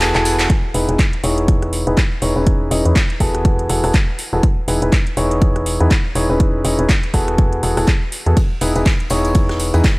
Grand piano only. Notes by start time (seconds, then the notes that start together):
Already playing: E3 B3 E4 F#4 G#4 A4
0.15 E3 B3 E4 F#4 G#4 A4
0.74 E3 B3 D#4 E4 G#4 B4
0.89 E3 B3 D#4 E4 G#4 B4
1.24 E3 B3 D#4 E4 G#4 C#5
1.87 E3 B3 D#4 E4 G#4 B4
2.22 E3 B3 D#4 E4 G#4 C#5
2.36 E3 C#4 D#4 E4 G#4 B4
2.71 E3 C#4 D#4 E4 G#4 D#5
2.85 E3 C#4 D#4 E4 G#4 B4
3.20 E3 B3 E4 F#4 G#4 A4
3.70 E3 B3 E4 F#4 G#4 A4
3.84 E3 B3 E4 F#4 G#4 A4
4.33 E3 B3 E4 F#4 G#4 A4
4.68 E3 B3 D#4 E4 G#4 B4
4.82 E3 B3 D#4 E4 G#4 B4
5.17 E3 B3 D#4 E4 G#4 C#5
5.80 E3 B3 D#4 E4 G#4 B4
6.15 E3 B3 D#4 E4 G#4 C#5
6.30 E3 C#4 D#4 E4 G#4 B4
6.65 E3 C#4 D#4 E4 G#4 D#5
6.79 E3 C#4 D#4 E4 G#4 B4
7.14 E3 B3 E4 F#4 G#4 A4
7.63 E3 B3 E4 F#4 G#4 A4
7.77 E3 B3 E4 F#4 G#4 A4
8.26 E3 B3 E4 F#4 G#4 A4
8.61 E3 B3 D#4 E4 G#4 B4
8.76 E3 B3 D#4 E4 G#4 B4
9.10 E3 B3 D#4 E4 G#4 C#5
9.74 E3 B3 D#4 E4 G#4 B4